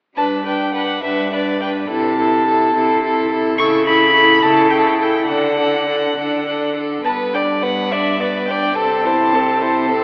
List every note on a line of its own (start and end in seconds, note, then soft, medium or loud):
0.17 0.93 G2 soft
0.17 0.45 D4 soft
0.17 0.45 B4 soft
0.17 0.25 A5 medium
0.45 0.74 D4 soft
0.45 0.74 B4 soft
0.45 0.74 G5 soft
0.74 1.03 D4 soft
0.74 1.03 B4 soft
0.74 1.03 F#5 medium
1.03 1.80 G2 soft
1.03 1.32 D4 soft
1.03 1.32 B4 soft
1.03 1.32 E5 medium
1.32 1.61 D4 soft
1.32 1.61 B4 soft
1.32 1.61 D5 soft
1.61 1.89 D4 soft
1.61 1.89 B4 soft
1.61 1.69 G5 soft
1.89 2.64 C3 medium
1.89 2.17 E4 soft
1.89 2.18 A4 soft
1.89 3.27 A5 medium
2.18 2.46 E4 soft
2.18 2.46 A4 soft
2.47 2.73 E4 soft
2.47 2.74 A4 soft
2.74 3.49 C3 soft
2.74 3.01 E4 soft
2.74 3.02 A4 soft
3.02 3.30 E4 soft
3.02 3.30 A4 soft
3.30 3.57 E4 soft
3.30 3.59 A4 soft
3.58 4.32 C#3 medium
3.58 3.86 E4 medium
3.58 3.86 A4 medium
3.58 3.66 C#6 medium
3.86 4.14 E4 soft
3.86 4.15 A4 soft
3.86 4.43 B5 medium
4.14 4.42 E4 soft
4.14 4.43 A4 soft
4.41 5.18 C#3 medium
4.41 4.70 E4 soft
4.41 4.72 A4 medium
4.41 4.72 A5 medium
4.70 4.98 E4 soft
4.70 5.00 A4 soft
4.70 4.80 G5 medium
4.79 4.89 A5 medium
4.87 4.96 G5 soft
4.95 5.28 E4 soft
4.95 5.04 A5 soft
5.01 5.29 A4 soft
5.01 5.27 G5 medium
5.27 6.06 D3 soft
5.27 5.57 D4 soft
5.27 5.58 A4 soft
5.27 6.72 F#5 medium
5.58 5.86 D4 soft
5.58 5.88 A4 soft
5.86 6.15 D4 soft
5.86 6.17 A4 soft
6.16 6.95 D3 soft
6.16 6.45 D4 soft
6.16 6.46 A4 soft
6.46 6.75 D4 soft
6.46 6.76 A4 soft
6.75 7.03 D4 soft
6.75 7.05 A4 soft
7.04 8.73 G2 soft
7.04 7.35 B3 soft
7.04 7.37 B4 soft
7.04 7.12 A5 medium
7.34 7.64 D4 soft
7.34 7.65 D5 soft
7.34 7.42 G5 soft
7.62 7.92 B3 soft
7.62 7.94 B4 soft
7.62 7.93 F#5 medium
7.91 8.20 D4 soft
7.91 8.20 D5 soft
7.91 8.22 E5 medium
8.20 8.50 B3 soft
8.20 8.52 B4 soft
8.20 8.48 D5 medium
8.48 8.76 D4 soft
8.48 8.76 D5 soft
8.48 8.77 G5 medium
8.75 10.04 C3 soft
8.75 9.06 C4 soft
8.75 9.07 A4 soft
8.75 10.04 A5 medium
9.04 9.34 E4 soft
9.04 9.36 C5 soft
9.33 9.63 C4 soft
9.33 9.63 A4 soft
9.61 9.89 E4 soft
9.61 9.89 C5 soft
9.89 10.04 C4 soft
9.89 10.04 A4 soft